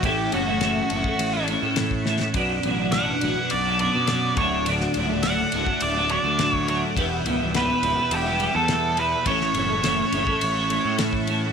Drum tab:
RD |x-x-x-x-x-x-x---|x-x-x-x-x-x-x-x-|x-x-x-x-x-x-x-x-|x-x-x-x-x-x-x-x-|
SD |----o-------o-oo|----o-------o---|-o--o-------o---|----o-------o---|
BD |o------o-----o--|o-------------o-|-------o-----o--|o---------------|

RD |x-x-x-x-x-x-x-x-|
SD |-o--o-------o---|
BD |o------o-----o--|